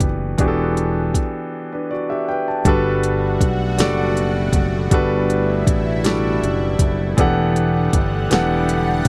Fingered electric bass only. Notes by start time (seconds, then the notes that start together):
0.01 F#1
0.39 E1
2.66 G1
3.41 B1
3.79 F#1
4.53 F#1
4.92 G1
5.67 A1
6.43 F#1
6.79 F#1
7.18 E1
7.94 G1
8.32 E1